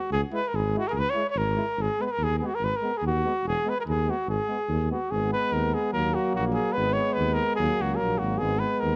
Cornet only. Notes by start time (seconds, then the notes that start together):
Already playing: F#4
0.12 G#4
0.34 B4
0.48 A#4
0.55 G#4
0.78 F#4
0.88 G#4 A#4
0.94 A#4
0.99 B4
1.10 C#5
1.30 C#5
1.38 A#4
1.82 G#4
2.01 B4
2.06 B4
2.12 A#4
2.23 G#4
2.39 G#4
2.46 F#4
2.55 A#4
2.64 B4
2.76 A#4
2.97 G#4
3.07 F#4
3.48 G#4
3.69 B4
3.80 A#4
3.89 G#4
4.10 F#4
4.29 G#4
4.92 F#4
5.11 G#4
5.33 B4
5.53 A#4
5.74 G#4
5.93 A#4
6.14 F#4
6.35 F#4
6.54 G#4
6.72 B4
6.93 C#5
7.13 B4
7.34 A#4
7.56 G#4
7.81 F#4
7.97 A#4
8.18 F#4
8.38 G#4
8.59 B4
8.80 A#4